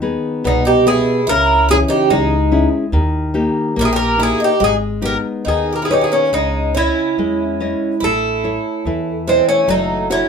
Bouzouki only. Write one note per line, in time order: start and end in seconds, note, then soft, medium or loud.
0.47 0.65 D#4 medium
0.67 0.85 G4 medium
0.88 1.29 G#4 medium
1.29 1.67 A#4 medium
1.71 1.76 G#4 loud
1.90 2.09 G4 medium
2.10 2.68 D#4 medium
3.81 3.85 A#4 medium
3.85 3.91 G#4 medium
3.96 4.20 A#4 medium
4.23 4.42 G#4 medium
4.44 4.63 G4 medium
4.64 4.75 G#4 medium
5.05 5.17 A#4 medium
5.48 5.73 G#4 medium
5.76 5.84 A#4 medium
5.85 5.93 G#4 medium
5.91 6.11 C#4 medium
5.91 6.02 G4 medium
6.04 6.12 G#4 medium
6.13 6.33 C#4 medium
6.34 6.77 D#4 medium
6.77 8.07 E4 medium
8.04 9.31 A4 medium
9.29 9.47 C4 medium
9.49 9.69 C#4 medium
9.70 10.08 D#4 medium
10.12 10.29 E4 medium